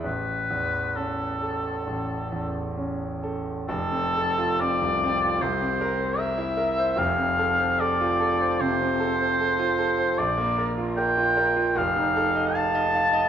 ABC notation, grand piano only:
X:1
M:4/4
L:1/16
Q:1/4=76
K:A
V:1 name="Grand piano"
A,,,2 E,,2 C2 A2 A,,,2 E,,2 C2 A2 | [K:F] F,,, C A F C C,, C F C,, C B c B E B c | [F,,,F,,] C A c A F A c C, C A c A F A c | B,,, B, B F B F B F F,,, _E A _e f e f e |]